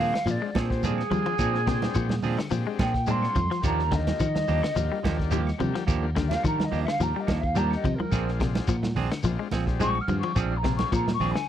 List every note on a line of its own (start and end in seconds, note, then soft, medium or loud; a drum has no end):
0.00 0.11 A#2 medium
0.00 0.14 F3 medium
0.00 0.14 C4 medium
0.00 0.14 D4 medium
0.00 0.13 G#4 medium
0.00 0.32 F5 loud
0.00 open hi-hat medium
0.00 shekere soft
0.14 muted clean electric guitar stroke soft
0.14 snare medium
0.14 ride bell medium
0.14 claves medium
0.25 0.39 A#2 loud
0.25 0.37 F3 loud
0.25 0.50 G#3 medium
0.25 0.51 C4 medium
0.25 0.51 D4 medium
0.25 0.51 F4 medium
0.25 ride bell medium
0.25 shekere loud
0.30 0.60 D5 loud
0.42 0.61 G#3 medium
0.42 muted clean electric guitar stroke soft
0.55 1.02 A#2 medium
0.55 0.70 C4 medium
0.55 0.70 D4 medium
0.55 0.70 G#4 medium
0.55 0.86 C5 medium
0.55 muted clean electric guitar stroke medium
0.55 kick medium
0.55 snare medium
0.55 ride bell soft
0.55 high conga medium
0.55 claves medium
0.55 shekere soft
0.69 0.93 G#3 medium
0.69 0.93 C4 medium
0.69 0.94 D4 medium
0.69 0.94 G4 medium
0.69 muted clean electric guitar stroke soft
0.69 kick medium
0.69 snare soft
0.83 1.01 F3 medium
0.83 1.01 C4 medium
0.83 1.01 D4 medium
0.83 1.01 G#4 medium
0.83 2.48 G#4 loud
0.83 ride bell medium
0.83 high conga medium
0.83 low conga medium
0.83 shekere loud
0.98 snare soft
0.98 claves medium
1.10 1.21 F3 medium
1.10 1.23 G3 medium
1.10 1.35 G#3 medium
1.10 1.35 C4 medium
1.10 1.36 D4 medium
1.10 1.36 F4 medium
1.10 muted clean electric guitar stroke soft
1.10 ride bell medium
1.10 low conga loud
1.10 shekere soft
1.26 1.35 F3 medium
1.26 muted clean electric guitar stroke medium
1.26 ride bell medium
1.39 1.86 A#2 loud
1.39 1.57 F3 medium
1.39 1.57 C4 medium
1.39 1.57 D4 medium
1.39 1.57 G#4 medium
1.39 kick medium
1.39 ride bell soft
1.39 high conga soft
1.39 claves medium
1.39 shekere medium
1.53 1.61 G#3 loud
1.53 1.61 C4 medium
1.53 1.61 D4 medium
1.53 1.62 F4 loud
1.53 snare soft
1.66 1.86 C3 medium
1.66 2.15 G#3 loud
1.66 2.16 C4 loud
1.66 2.16 D4 medium
1.66 2.16 G5 loud
1.66 muted clean electric guitar stroke soft
1.66 kick medium
1.66 snare medium
1.66 ride bell medium
1.66 shekere soft
1.82 snare medium
1.82 ride bell medium
1.82 high conga loud
1.95 2.19 A#2 loud
1.95 2.14 F3 medium
1.95 muted clean electric guitar stroke soft
1.95 kick medium
1.95 ride bell medium
1.95 high conga soft
1.95 claves medium
1.95 shekere medium
2.09 muted clean electric guitar stroke medium
2.09 snare medium
2.09 high conga medium
2.23 2.36 A#2 medium
2.23 2.38 F3 medium
2.23 2.38 C4 medium
2.23 2.38 D4 loud
2.23 2.38 G#4 loud
2.23 open hi-hat medium
2.23 low conga medium
2.23 shekere soft
2.38 2.47 D3 medium
2.38 muted clean electric guitar stroke medium
2.38 snare medium
2.38 claves medium
2.50 2.64 A#2 loud
2.50 2.61 F3 medium
2.50 2.83 G#3 medium
2.50 2.83 C4 medium
2.50 2.84 D4 medium
2.50 2.84 G4 loud
2.50 ride bell medium
2.50 high conga soft
2.50 shekere medium
2.67 2.85 G#3 medium
2.67 muted clean electric guitar stroke medium
2.79 3.26 A#2 loud
2.79 2.95 F3 medium
2.79 2.94 C4 medium
2.79 2.94 D4 medium
2.79 2.93 G#4 medium
2.79 3.12 G5 loud
2.79 kick medium
2.79 snare medium
2.79 ride bell medium
2.79 high conga loud
2.79 claves medium
2.79 shekere soft
2.94 muted clean electric guitar stroke soft
2.94 kick medium
2.94 snare soft
3.07 3.39 G#3 medium
3.07 3.27 G#3 medium
3.07 3.40 C4 medium
3.07 3.25 C4 medium
3.07 3.40 D4 medium
3.07 3.25 D4 medium
3.07 3.40 F4 medium
3.07 3.63 C6 loud
3.07 muted clean electric guitar stroke medium
3.07 ride bell medium
3.07 high conga medium
3.07 shekere medium
3.22 snare soft
3.22 claves medium
3.35 3.48 F2 medium
3.35 3.46 F3 medium
3.35 muted clean electric guitar stroke soft
3.35 kick medium
3.35 ride bell medium
3.35 high conga medium
3.35 low conga medium
3.35 shekere soft
3.51 3.60 F3 medium
3.51 muted clean electric guitar stroke medium
3.51 snare soft
3.61 4.11 D#2 loud
3.61 4.28 D3 medium
3.61 3.81 F3 medium
3.61 4.27 G3 medium
3.61 4.27 A#3 medium
3.61 3.82 A#3 medium
3.61 3.82 D4 loud
3.61 4.28 F4 medium
3.61 3.82 G4 medium
3.61 kick loud
3.61 ride bell medium
3.61 high conga soft
3.61 claves medium
3.61 shekere loud
3.66 3.96 A#5 loud
3.79 snare soft
3.91 4.11 D3 medium
3.91 5.57 D#5 loud
3.91 muted clean electric guitar stroke soft
3.91 kick medium
3.91 snare medium
3.91 ride bell medium
3.91 low conga medium
3.91 shekere soft
4.07 snare medium
4.07 ride bell medium
4.07 high conga loud
4.20 4.43 D#3 loud
4.20 4.39 F3 medium
4.20 muted clean electric guitar stroke soft
4.20 kick medium
4.20 ride bell medium
4.20 high conga soft
4.20 claves medium
4.20 shekere loud
4.35 muted clean electric guitar stroke soft
4.35 snare medium
4.35 high conga medium
4.48 4.61 D#2 medium
4.48 4.63 F3 medium
4.48 4.63 A#3 medium
4.48 4.62 D4 medium
4.48 4.62 G4 loud
4.48 open hi-hat medium
4.48 low conga medium
4.48 shekere soft
4.63 4.72 D3 medium
4.63 muted clean electric guitar stroke medium
4.63 snare medium
4.63 ride bell medium
4.63 claves medium
4.74 4.89 D#2 loud
4.74 4.86 F3 medium
4.74 4.99 G3 medium
4.74 5.00 A#3 medium
4.74 4.99 D4 medium
4.74 5.00 F4 loud
4.74 ride bell medium
4.74 high conga soft
4.74 shekere loud
4.91 5.10 G3 medium
4.91 muted clean electric guitar stroke medium
5.03 5.51 D#2 medium
5.03 5.18 F3 medium
5.03 5.18 A#3 medium
5.03 5.18 D4 medium
5.03 5.17 G4 medium
5.03 kick medium
5.03 snare medium
5.03 ride bell medium
5.03 high conga loud
5.03 claves medium
5.03 shekere soft
5.16 5.41 G3 loud
5.16 5.42 A#3 medium
5.16 5.42 D4 medium
5.16 5.42 F4 loud
5.16 muted clean electric guitar stroke medium
5.16 kick medium
5.16 snare soft
5.31 5.49 F3 medium
5.31 5.51 G3 medium
5.31 5.49 A#3 medium
5.31 5.49 G4 loud
5.31 muted clean electric guitar stroke loud
5.31 ride bell medium
5.31 high conga medium
5.31 shekere loud
5.47 snare soft
5.47 claves medium
5.58 5.72 C3 medium
5.58 5.70 F3 medium
5.58 5.83 G3 medium
5.58 5.84 A#3 medium
5.58 5.84 D4 medium
5.58 5.84 G4 loud
5.58 muted clean electric guitar stroke soft
5.58 ride bell medium
5.58 high conga medium
5.58 low conga medium
5.58 shekere soft
5.74 5.84 F3 medium
5.74 muted clean electric guitar stroke medium
5.74 snare soft
5.74 ride bell medium
5.87 6.35 D#2 loud
5.87 6.05 F3 loud
5.87 6.05 A#3 medium
5.87 6.05 D4 medium
5.87 6.05 G4 loud
5.87 kick medium
5.87 ride bell medium
5.87 high conga soft
5.87 claves medium
5.87 shekere loud
6.01 6.10 G3 loud
6.01 6.10 A#3 medium
6.01 6.10 D4 medium
6.01 6.11 F4 loud
6.15 6.35 D3 medium
6.15 6.64 G3 medium
6.15 6.64 A#3 medium
6.15 6.64 D4 medium
6.15 6.65 F4 loud
6.15 muted clean electric guitar stroke soft
6.15 kick medium
6.15 snare medium
6.15 ride bell medium
6.15 shekere soft
6.28 6.45 F5 loud
6.28 snare medium
6.28 ride bell medium
6.28 high conga loud
6.43 6.68 D#3 loud
6.43 6.63 F3 medium
6.43 6.66 A#5 loud
6.43 muted clean electric guitar stroke soft
6.43 kick medium
6.43 ride bell soft
6.43 claves medium
6.43 shekere medium
6.58 muted clean electric guitar stroke soft
6.58 snare medium
6.58 high conga medium
6.64 6.82 D#5 medium
6.71 6.84 D#2 medium
6.71 6.86 F3 medium
6.71 6.86 A#3 medium
6.71 6.86 D4 medium
6.71 6.85 G4 medium
6.71 open hi-hat medium
6.71 low conga medium
6.71 shekere soft
6.83 7.04 F5 loud
6.83 muted clean electric guitar stroke soft
6.83 claves medium
6.88 6.97 D3 medium
6.88 snare medium
6.99 7.13 D#2 loud
6.99 7.10 F3 medium
6.99 7.32 G3 medium
6.99 7.32 A#3 medium
6.99 7.32 D4 medium
6.99 7.33 F4 medium
6.99 7.21 A#5 loud
6.99 ride bell medium
6.99 high conga soft
6.99 shekere medium
7.15 7.35 G3 medium
7.15 muted clean electric guitar stroke soft
7.20 7.37 D#5 medium
7.27 7.75 D#2 loud
7.27 7.42 F3 medium
7.27 7.42 A#3 medium
7.27 7.41 D4 medium
7.27 muted clean electric guitar stroke medium
7.27 kick medium
7.27 snare medium
7.27 ride bell medium
7.27 high conga loud
7.27 claves medium
7.27 shekere soft
7.38 7.59 F5 loud
7.42 muted clean electric guitar stroke soft
7.42 kick medium
7.55 7.73 F3 medium
7.55 7.88 G3 medium
7.55 7.75 G3 medium
7.55 7.88 A#3 medium
7.55 7.73 A#3 medium
7.55 7.88 D4 medium
7.55 7.73 D4 medium
7.55 7.74 G4 medium
7.55 7.88 G4 medium
7.55 7.74 A#5 loud
7.55 ride bell medium
7.55 high conga loud
7.55 shekere loud
7.71 snare soft
7.71 claves medium
7.75 7.96 D#5 medium
7.83 7.97 C3 medium
7.83 7.95 F3 medium
7.83 muted clean electric guitar stroke soft
7.83 kick medium
7.83 ride bell medium
7.83 low conga medium
7.83 shekere soft
7.95 8.48 A#4 loud
7.99 8.08 F3 medium
7.99 muted clean electric guitar stroke soft
7.99 high conga medium
8.11 8.59 A#1 loud
8.11 8.30 F3 medium
8.11 8.76 G#3 medium
8.11 8.76 C4 medium
8.11 8.30 C4 medium
8.11 8.77 D4 medium
8.11 8.30 D4 medium
8.11 8.77 F4 medium
8.11 8.30 G#4 loud
8.11 kick medium
8.11 snare soft
8.11 ride bell medium
8.11 high conga soft
8.11 claves medium
8.11 shekere medium
8.28 snare soft
8.40 8.59 C3 medium
8.40 muted clean electric guitar stroke soft
8.40 kick medium
8.40 snare medium
8.40 ride bell medium
8.40 shekere soft
8.55 snare medium
8.55 ride bell medium
8.55 high conga loud
8.67 8.92 A#2 loud
8.67 8.87 F3 medium
8.67 muted clean electric guitar stroke soft
8.67 kick medium
8.67 ride bell medium
8.67 claves medium
8.67 shekere medium
8.83 muted clean electric guitar stroke medium
8.83 snare medium
8.83 high conga medium
8.95 9.08 A#1 medium
8.95 9.10 C4 loud
8.95 9.10 D4 loud
8.95 9.10 G#4 loud
8.95 open hi-hat medium
8.95 low conga medium
8.95 shekere soft
9.11 9.20 D3 medium
9.11 snare medium
9.11 ride bell medium
9.11 claves medium
9.23 9.36 A#1 loud
9.23 9.35 F3 medium
9.23 9.48 G#3 medium
9.23 9.48 C4 medium
9.23 9.48 D4 medium
9.23 9.49 F4 loud
9.23 ride bell medium
9.23 high conga soft
9.23 shekere loud
9.39 9.58 G#3 medium
9.39 muted clean electric guitar stroke soft
9.51 9.99 A#1 loud
9.51 9.67 F3 medium
9.51 9.65 C4 medium
9.51 9.65 G#4 medium
9.51 muted clean electric guitar stroke medium
9.51 kick medium
9.51 snare medium
9.51 ride bell medium
9.51 high conga medium
9.51 claves medium
9.51 shekere soft
9.66 9.90 G#3 medium
9.66 9.91 C4 medium
9.66 9.91 D4 medium
9.66 9.91 G4 medium
9.66 muted clean electric guitar stroke soft
9.66 kick medium
9.66 snare soft
9.79 9.97 F3 medium
9.79 9.99 G#3 medium
9.79 9.97 C4 medium
9.79 9.98 D4 medium
9.79 9.98 G#4 loud
9.79 10.02 C#6 loud
9.79 ride bell medium
9.79 high conga loud
9.79 shekere medium
9.95 claves medium
10.01 10.18 F6 medium
10.07 10.21 G2 medium
10.07 10.19 F3 medium
10.07 10.32 G#3 medium
10.07 10.32 C4 medium
10.07 10.33 D4 medium
10.07 10.33 F4 medium
10.07 muted clean electric guitar stroke soft
10.07 ride bell medium
10.07 high conga medium
10.07 low conga medium
10.07 shekere soft
10.19 10.40 C#6 medium
10.19 muted clean electric guitar stroke medium
10.23 10.32 F3 medium
10.23 ride bell medium
10.35 10.83 A#1 loud
10.35 10.53 F3 medium
10.35 10.54 C4 medium
10.35 10.54 D4 medium
10.35 10.54 G#4 medium
10.35 10.58 F6 loud
10.35 kick medium
10.35 ride bell soft
10.35 high conga soft
10.35 claves medium
10.35 shekere loud
10.50 10.58 G#3 medium
10.50 10.59 C4 medium
10.50 10.59 D4 medium
10.50 10.59 F4 medium
10.57 10.74 A#5 loud
10.63 10.84 C3 medium
10.63 11.12 G#3 medium
10.63 11.12 C4 medium
10.63 11.12 D4 medium
10.63 11.13 F4 medium
10.63 muted clean electric guitar stroke soft
10.63 kick medium
10.63 snare medium
10.63 ride bell medium
10.63 shekere soft
10.76 10.93 C#6 medium
10.76 snare medium
10.76 ride bell medium
10.76 high conga loud
10.91 11.16 A#2 loud
10.91 11.12 F3 medium
10.91 11.11 A#5 loud
10.91 muted clean electric guitar stroke soft
10.91 kick medium
10.91 ride bell medium
10.91 claves medium
10.91 shekere medium
11.07 muted clean electric guitar stroke soft
11.07 snare medium
11.07 high conga medium
11.13 11.33 C#6 loud
11.20 11.32 A#1 medium
11.20 11.35 F3 medium
11.20 11.35 C4 medium
11.20 11.34 D4 medium
11.20 11.34 G#4 medium
11.20 open hi-hat medium
11.20 low conga medium
11.20 shekere soft
11.31 11.48 G#5 medium
11.31 muted clean electric guitar stroke soft
11.35 11.44 D3 medium
11.35 snare medium
11.35 claves medium